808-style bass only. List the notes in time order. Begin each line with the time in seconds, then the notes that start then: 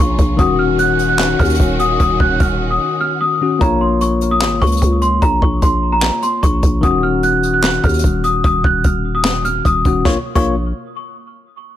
0.00 A#1
0.19 A#1
0.39 D#1
1.39 D#2
1.60 D#1
2.00 D#1
2.20 D#1
2.40 D#1
3.61 A#1
4.41 G#1
4.62 C#2
4.82 C#2
5.22 A#1
5.42 A#1
5.62 A#1
6.43 A#1
6.63 A#1
6.83 D#1
7.84 D#2
8.04 D#1
8.44 D#1
8.64 D#1
8.84 D#1
9.65 D#1
9.85 D#1
10.05 A#1
10.35 A#1